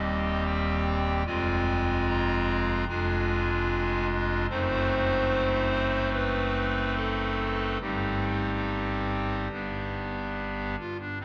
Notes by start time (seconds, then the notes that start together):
Already playing: D#1 D#2 G3 C4 G4 D#5
0.46 G5
1.26 F1 F2 G#3 C4 F4 G#5
2.09 A#5
2.89 F1 F2 G#3 D4 F4 G#5
4.50 F#1 F#2 A3 C4 D#4 C5
6.13 B4
6.96 A4
7.81 G1 G2 G3 C4 D#4 G4
9.52 G1 G2 G3 B3 D4
10.79 F4
11.00 D4
11.21 C2 C3 C4 D#4